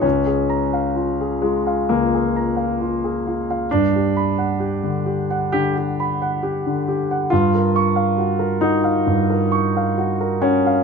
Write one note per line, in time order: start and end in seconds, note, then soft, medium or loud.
0.02 1.83 C#2 soft
0.02 1.41 C#4 medium
0.26 0.63 G#4 soft
0.50 0.86 A#5 soft
0.73 1.10 F5 soft
0.96 1.33 F4 soft
1.20 1.57 G#4 soft
1.41 1.88 G#3 medium
1.41 1.79 F4 soft
1.67 2.02 F5 soft
1.89 3.64 C#2 soft
1.89 3.68 A#3 medium
2.14 2.48 G#4 soft
2.36 2.70 A#5 soft
2.57 2.92 F5 soft
2.81 3.15 F4 soft
3.04 3.38 G#4 soft
3.27 3.60 F4 soft
3.50 3.70 F5 soft
3.71 5.51 G2 soft
3.71 5.54 D4 medium
3.96 4.28 G4 soft
4.17 4.50 B5 soft
4.38 4.72 F#5 soft
4.60 4.96 G4 soft
4.83 5.20 D3 soft
5.06 5.44 G4 soft
5.30 5.67 F#5 soft
5.52 5.90 D3 soft
5.52 5.76 G4 medium
5.78 6.13 G4 soft
6.00 6.35 B5 soft
6.22 6.57 F#5 soft
6.43 6.78 G4 soft
6.67 7.01 D3 soft
6.88 7.23 G4 soft
7.11 7.32 F#5 soft
7.30 9.04 G2 soft
7.30 8.62 F4 medium
7.55 7.88 A#4 soft
7.76 8.10 C#6 soft
7.96 8.31 F5 soft
8.18 8.53 F#4 soft
8.39 8.75 A#4 soft
8.61 10.42 D#4 medium
8.61 8.98 F#4 soft
8.84 9.20 F5 soft
9.06 10.83 G2 soft
9.30 9.66 A#4 soft
9.52 9.88 C#6 soft
9.77 10.12 F5 soft
9.98 10.34 F#4 soft
10.21 10.56 A#4 soft
10.42 10.84 C#4 medium
10.42 10.79 F#4 soft
10.66 10.84 F5 soft